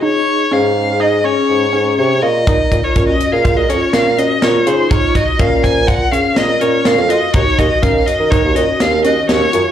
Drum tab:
HH |----------|xxxxxxxxxx|xxxxxxxxxx|xxxxxxxxxx|
SD |----------|------o-o-|------o-o-|------o-o-|
BD |----------|ooo-o-----|ooooo-----|ooo-o-----|